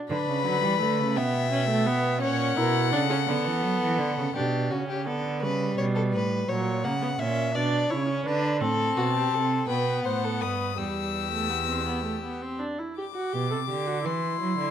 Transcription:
0.09 cello D3, viola D4, violin B4 B5
0.27 cello C#3
0.45 cello D3, viola F#3
0.62 cello E3, viola G3
0.81 cello D3, viola A3
0.99 cello C#3
1.16 cello B2, viola B3, violin E5 G5
1.51 viola C#4
1.69 viola A3
1.86 viola B3
2.21 cello A#2, viola C#4, violin C#5 F#5
2.57 cello B2, viola E4, violin A#4
2.92 cello C#3, viola D4, violin A4
3.10 viola C#4
3.27 cello D3, viola B3
3.46 cello E3
3.63 cello F#3
3.81 cello E3
3.99 cello D3
4.17 cello C#3
4.35 cello B2, viola D4, violin G4
4.70 cello C#3, viola C#4, violin F#4
4.88 violin G4
5.07 cello D3, viola B3, violin A4
5.42 cello C#3, viola G3, violin B4
5.78 cello B2, violin C#5
5.95 violin A4
6.13 cello A2, violin B4
6.49 cello A#2, viola F#3, violin C#5
6.84 cello C#3, viola A#3, violin F#5
7.02 viola B3
7.19 cello A#2, viola C#4, violin E5
7.54 cello B2, viola D4, violin D5
7.90 cello C#3, viola E4, violin C#5
8.08 viola C#4
8.25 cello D3, viola D4, violin B4
8.61 cello A2, viola C4, violin A4 A5
8.97 cello B2, violin F#4
9.15 violin G4
9.33 cello C3, violin A4
9.69 cello B2, viola B3, violin B4 G5
10.04 cello A2, violin C5 F#5
10.24 violin A4
10.41 cello G2, violin B4 D#6
10.77 cello E2, viola G3, violin G4 E6
11.32 viola A3
11.49 viola B3
11.68 viola C4
11.87 viola B3
12.05 viola A3
12.24 viola B3
12.42 viola C4
12.59 viola D4
12.78 viola E4
12.98 viola G4, violin D6
13.15 viola F#4
13.33 cello B2, viola G4
13.50 cello C3, viola A4
13.68 cello D3, viola G4
13.86 viola F#4
14.04 cello E3, viola E4, violin C6
14.41 cello F#3
14.58 cello D3

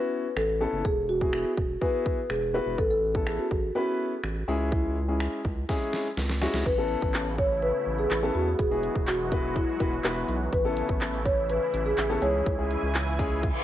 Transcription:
Already playing: grand piano B3 C#4 E4 F#4, marimba B4
0.37 analog synth bass A1, marimba A4, finger snap
0.61 grand piano B3 C#4 E4 A4
0.73 analog synth bass F#1
0.85 analog synth bass E1, marimba G#4, kick
1.09 marimba F#4
1.21 grand piano B3 E4 F#4 G#4, kick
1.33 finger snap
1.58 analog synth bass E1, kick
1.81 grand piano B3 E4 F#4 G#4, marimba B4, kick
2.06 kick
2.30 analog synth bass E1, marimba G#4, finger snap
2.54 grand piano B3 E4 F#4 B4, marimba B4
2.66 analog synth bass E1
2.79 analog synth bass A1, marimba A4, kick
2.91 marimba A4
3.15 grand piano B3 C#4 E4 A4, kick
3.27 marimba G#4, finger snap
3.39 marimba F#4
3.51 analog synth bass A1, kick
3.75 grand piano B3 C#4 E4 B4, marimba F#4
4.24 analog synth bass A1, finger snap
4.48 analog synth bass C#2, grand piano G#3 C#4 E4 G#4
4.72 marimba E4, kick
5.08 grand piano G#3 C#4 E4 G#4
5.20 finger snap
5.45 analog synth bass C#2, kick
5.69 grand piano G#3 C#4 E4 G#4, kick, snare
5.93 snare
6.17 analog synth bass C#2, snare
6.29 snare
6.41 grand piano G#3 C#4 E4 F#4, snare
6.54 analog synth bass C#2, snare
6.66 analog synth bass A1, supersaw synth C#3 E3 A3 B3 E4, marimba B4, kick, crash
6.78 grand piano B3 C#4 E4 A4
7.02 analog synth bass A1, kick
7.14 clap
7.38 marimba C#5, kick
7.62 marimba B4
7.87 analog synth bass A1
7.99 marimba G#4
8.11 analog synth bass A1, clap
8.23 grand piano B3 C#4 E4 A4
8.35 analog synth bass E2, marimba F#4
8.59 analog synth bass E1, supersaw synth F#3 G#3 F#4, marimba G#4, kick, closed hi-hat
8.71 grand piano B3 E4 F#4 G#4
8.83 closed hi-hat
8.96 analog synth bass E1, kick
9.07 marimba F#4, clap, closed hi-hat
9.32 grand piano B3 E4 F#4 B4, kick, closed hi-hat
9.56 marimba E4, kick, closed hi-hat
9.80 analog synth bass E1, grand piano B3 E4 F#4 B4, kick, closed hi-hat
10.04 analog synth bass E1, grand piano B3 E4 F#4 B4, clap, closed hi-hat
10.28 analog synth bass B1, closed hi-hat
10.53 analog synth bass A1, supersaw synth C#3 A3 E4, marimba B4, kick, closed hi-hat
10.65 grand piano B3 C#4 E4 A4
10.77 closed hi-hat
10.89 analog synth bass A1, kick
11.01 clap, closed hi-hat
11.25 marimba C#5, kick, closed hi-hat
11.49 marimba B4, closed hi-hat
11.74 analog synth bass A1, closed hi-hat
11.86 marimba G#4
11.98 analog synth bass A1, clap, closed hi-hat
12.10 grand piano B3 C#4 E4 A4
12.22 analog synth bass C#2, grand piano G#3 C#4 E4 G#4, marimba C#5, supersaw synth G#5, closed hi-hat
12.46 analog synth bass C#2, kick, closed hi-hat
12.58 grand piano G#3 C#4 E4 G#4
12.71 closed hi-hat
12.83 analog synth bass C#2
12.94 clap, closed hi-hat
13.19 grand piano G#3 C#4 E4 G#4, kick, closed hi-hat
13.43 kick, closed hi-hat, reverse cymbal

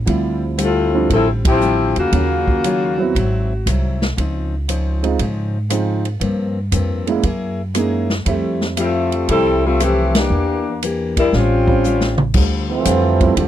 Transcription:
0.06 upright bass D2, steel-string acoustic guitar D3 G3 C4 F4, grand piano F3 G3 C4 E4, kick, ride
0.58 steel-string acoustic guitar D3 G3 C4 F4, hi-hat pedal, ride
0.63 saxophone section A3 C4 E4 F4
0.95 grand piano F3 G3 C4 D4
1.09 upright bass A1, steel-string acoustic guitar D3 G3 C4 F4, saxophone section F3 C4 A4, kick, ride
1.13 saxophone section E4
1.45 saxophone section F3 C4 E4 G4, kick, ride
1.61 steel-string acoustic guitar D3 G3 C4 F4, hi-hat pedal
1.96 upright bass E2, saxophone section C#3 A#3 F4 F#4, ride
2.12 upright bass D#2, steel-string acoustic guitar D#3 F#3 C#4 F4, grand piano F#3 A#3 C#4 F5, kick, ride
2.48 kick
2.64 steel-string acoustic guitar D#3 F#3 C#4 F4, hi-hat pedal, ride
2.98 grand piano F#3 B3 C4 E4
3.15 upright bass G#1, steel-string acoustic guitar G#2 F#3 C4 E4, kick, ride
3.66 upright bass C2, steel-string acoustic guitar G#2 F#3 C4 E4, cross-stick, hi-hat pedal, ride
4.02 snare
4.16 upright bass C#2, steel-string acoustic guitar C#3 F3 C4 D#4, kick, ride
4.68 steel-string acoustic guitar C#3 F3 C4 D#4, hi-hat pedal, ride
5.03 grand piano G#3 C4 D#4 F4, ride
5.19 upright bass G#2, steel-string acoustic guitar C#3 F3 C4 D#4, kick, ride
5.69 steel-string acoustic guitar C#3 F3 C4 D#4, grand piano G#3 C4 D#4 F4, cross-stick, hi-hat pedal, ride
6.05 ride
6.20 steel-string acoustic guitar G2 F3 A#3 C4, upright bass G2, kick, ride
6.72 upright bass F2, steel-string acoustic guitar G2 F3 A#3 C4, hi-hat pedal, ride
7.07 grand piano G#3 A#3 C#4 E4, ride
7.22 upright bass F#2, steel-string acoustic guitar F#3 A#3 E4 G#4, kick, ride
7.74 steel-string acoustic guitar F#3 A#3 E4 G#4, grand piano G#3 A#3 C#4 D#4, cross-stick, hi-hat pedal, ride
8.10 snare
8.25 upright bass F2, steel-string acoustic guitar F3 A3 E4 G4, grand piano G3 A3 C4 E5, kick, ride
8.61 snare
8.77 steel-string acoustic guitar F3 A3 E4 G4, saxophone section G3 A3 C4 F4, hi-hat pedal, ride
9.12 ride
9.27 upright bass C2, steel-string acoustic guitar F3 A3 E4 G4, saxophone section G3 C4 E4 A4, kick, ride
9.66 saxophone section G3 A3 C4 F4
9.80 saxophone section E3 A3 C4 G4, steel-string acoustic guitar F3 A3 E4 G4, cross-stick, hi-hat pedal, ride
10.15 saxophone section E3 A#3 D4 G4, snare, ride
10.30 upright bass E2, steel-string acoustic guitar E3 A#3 D4 G4
10.82 steel-string acoustic guitar E3 A#3 D4 G4, hi-hat pedal, ride
11.17 saxophone section G3 D4 E4 A#4, kick, ride
11.33 upright bass A1, steel-string acoustic guitar A2 G3 C#4 F4, saxophone section G3 C4 C#4 F4, kick, snare
11.67 grand piano G3 C4 C#4 F4, kick
11.84 steel-string acoustic guitar A2 G3 C#4 F4, hi-hat pedal
12.00 snare
12.18 mid tom
12.34 upright bass D2, steel-string acoustic guitar D3 G3 C4 F4, kick, crash
12.69 trombone section E3 F3 A3 C4
12.85 upright bass F2, steel-string acoustic guitar D3 G3 C4 F4, kick, hi-hat pedal, ride
13.21 grand piano F3 G3 A3 C4 E4, kick, ride
13.36 upright bass E2, steel-string acoustic guitar D3 G3 C4 F4, trombone section A3 C4 D4 F4, kick, ride

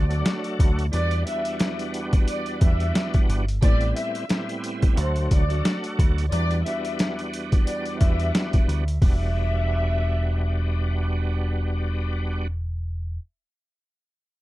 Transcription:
Already playing: picked electric bass D2, violin section D5
0.09 tonewheel organ F#3 A3 D4 F#4, closed hi-hat
0.26 snare, closed hi-hat
0.44 closed hi-hat
0.59 picked electric bass D2, kick, closed hi-hat
0.79 closed hi-hat
0.91 tonewheel organ E2 G3 B3 D4 F#4, picked electric bass E2, violin section D5, closed hi-hat
1.11 closed hi-hat
1.25 tonewheel organ E2 G3 B3 D4 F#4, violin section E5, closed hi-hat
1.45 closed hi-hat
1.60 snare, closed hi-hat
1.79 closed hi-hat
1.94 closed hi-hat
2.13 kick, closed hi-hat
2.28 violin section D5, closed hi-hat
2.46 closed hi-hat
2.61 picked electric bass E2, violin section E5, kick, closed hi-hat
2.80 closed hi-hat
2.95 snare, closed hi-hat
3.14 kick, closed hi-hat
3.29 picked electric bass G1, closed hi-hat
3.48 closed hi-hat
3.61 picked electric bass A1, tonewheel organ A2 G3 B3 C4 E4, violin section D5, kick, closed hi-hat
3.81 closed hi-hat
3.96 violin section E5, closed hi-hat
4.15 closed hi-hat
4.29 tonewheel organ A2 G3 B3 C4 E4, snare, closed hi-hat
4.49 closed hi-hat
4.64 closed hi-hat
4.82 kick, closed hi-hat
4.96 picked electric bass D2, tonewheel organ F#3 A3 D4 F#4, violin section C5, closed hi-hat
5.16 closed hi-hat
5.31 picked electric bass D2, violin section D5, kick, closed hi-hat
5.48 tonewheel organ F#3 A3 D4 F#4, closed hi-hat
5.65 snare, closed hi-hat
5.84 closed hi-hat
5.99 picked electric bass D2, kick, closed hi-hat
6.18 closed hi-hat
6.30 tonewheel organ E2 G3 B3 D4 F#4, picked electric bass E2, violin section D5, closed hi-hat
6.51 closed hi-hat
6.64 tonewheel organ E2 G3 B3 D4 F#4, violin section E5, closed hi-hat
6.85 closed hi-hat
6.99 snare, closed hi-hat
7.19 closed hi-hat
7.34 closed hi-hat
7.52 kick, closed hi-hat
7.67 violin section D5, closed hi-hat
7.86 closed hi-hat
8.00 picked electric bass E2, violin section E5, kick, closed hi-hat
8.20 closed hi-hat
8.35 snare, closed hi-hat
8.53 kick, closed hi-hat
8.68 picked electric bass D2, closed hi-hat
8.88 closed hi-hat
9.01 picked electric bass E1, tonewheel organ G3 B3 D4 F#4, violin section E5, kick, open hi-hat

